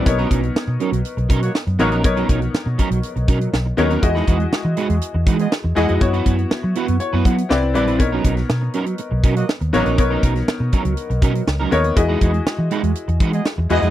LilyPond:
<<
  \new Staff \with { instrumentName = "Horn section" } { \time 4/4 \key b \major \tempo 4 = 121 r2 r8. <ais fis' cis''>16 r8 <ais fis' dis''>8 | r1 | r2 r8. <b gis' dis''>16 r8 <b gis' dis''>8 | r1 |
r2 r8. <ais fis' dis''>16 r8 <ais fis' dis''>8 | r1 | r2 r8. <b gis' dis''>16 r8 <b gis' dis''>8 | }
  \new Staff \with { instrumentName = "Grand piano" } { \time 4/4 \key b \major << { r1 | r1 | r1 | r2 cis''8 fis''4 r8 |
r1 | r1 | r1 | } \\ { <b dis' ais' cis''>4. r2 <b dis' ais' cis''>8 | <b dis' ais' cis''>4. r2 <b dis' ais' cis''>8 | <gis e' fis' dis''>4. r2 <gis e' fis' dis''>8 | <b e' fis' cis''>4. r4. <c' e' b' d''>8 <c' e' b' d''>8 |
<b dis' ais' cis''>4. r2 <b dis' ais' cis''>8 | <b dis' ais' cis''>4. r2 <b dis' ais' cis''>8 | <gis e' fis' dis''>4. r2 <gis e' fis' dis''>8 | } >> }
  \new Staff \with { instrumentName = "Clean electric guitar" } { \time 4/4 \key b \major r16 <fis cis' dis' ais'>16 <fis cis' dis' ais'>16 r8. <fis cis' dis' ais'>8 r8 <fis cis' dis' ais'>8 r8 <fis cis' dis' ais'>16 <fis cis' dis' ais'>16 | r16 <fis cis' dis' ais'>16 <fis cis' dis' ais'>16 r8. <fis cis' dis' ais'>8 r8 <fis cis' dis' ais'>8 r8 <fis cis' dis' ais'>16 <fis cis' dis' ais'>16 | r16 <gis dis' fis' b'>16 <gis dis' fis' b'>16 r8. <gis dis' fis' b'>8 r8 <gis dis' fis' b'>8 r8 <gis dis' fis' b'>16 <gis dis' fis' b'>16 | r16 <b e' fis' b'>16 <b e' fis' b'>16 r8. <b e' fis' b'>8 r16 <b e' fis' b'>16 <b e' fis' b'>16 r8. <g d' e' b'>16 <g d' e' b'>16 |
r16 <fis cis' dis' ais'>16 <fis cis' dis' ais'>16 r8. <fis cis' dis' ais'>8 r8 <fis cis' dis' ais'>8 r8 <fis cis' dis' ais'>16 <fis cis' dis' ais'>16 | r16 <fis cis' dis' ais'>16 <fis cis' dis' ais'>16 r8. <fis cis' dis' ais'>8 r8 <fis cis' dis' ais'>8 r16 <fis cis' dis' ais'>8 r16 | r16 <gis dis' fis' b'>16 <gis dis' fis' b'>16 r8. <gis dis' fis' b'>8 r8 <gis dis' fis' b'>8 r8 <gis dis' fis' b'>16 <gis dis' fis' b'>16 | }
  \new Staff \with { instrumentName = "Fingered electric bass" } { \clef bass \time 4/4 \key b \major b,,8 b,,8 r16 b,16 r16 b,,16 r16 b,,16 b,8 r16 fis,16 a,,16 ais,,16 | b,,8 b,,8 r16 b,16 r16 b,,16 r16 b,,16 b,8 b,,8 dis,8 | e,8 e,8 r16 e16 r16 e,16 r16 e,16 e8 r16 e,16 e,16 eis,16 | fis,8 fis,8 r16 fis16 r16 fis,16 r16 fis,16 fis8 c,8 ais,,8 |
b,,8 b,,8 b,8 r8. b,,16 b,8 r16 dis,16 a,,16 ais,,16 | b,,8 b,,8 r16 b,16 r16 cis,16 r16 b,,16 r8 cis,8 dis,8 | e,8 e,8 r16 e16 r16 e,16 r16 e,16 e8 r16 e,16 e,16 eis,16 | }
  \new DrumStaff \with { instrumentName = "Drums" } \drummode { \time 4/4 <hh bd>16 hh16 <hh bd>16 hh16 sn8 hh16 hh16 hh16 hh16 <hh bd>16 hh16 sn16 hh16 hh16 hh16 | <hh bd>16 hh16 <hh bd>16 hh16 sn8 <hh bd>16 hh16 hh16 hh16 <hh bd>16 hh16 sn8 hh16 hh16 | <hh bd>16 sn16 <hh bd>16 hh16 sn8 hh16 hh16 hh8 <hh bd>16 hh16 sn8 <hh sn>16 hh16 | <hh bd>16 hh16 <hh bd>16 hh16 sn8 hh16 hh16 hh8 <hh bd>16 hh16 sn8 hh16 hh16 |
<hh bd>8 <hh bd>16 <hh sn>16 sn8 hh16 hh16 hh8 <hh bd>16 hh16 sn16 hh16 <hh sn>16 hh16 | <hh bd>8 <hh bd>16 <hh sn>16 sn8 <hh bd>16 hh16 hh16 hh16 <hh bd>16 hh16 sn8 hh16 hh16 | <hh bd>8 <hh bd>16 hh16 sn8 hh16 hh16 hh16 hh16 <hh bd>16 hh16 sn8 hh16 hh16 | }
>>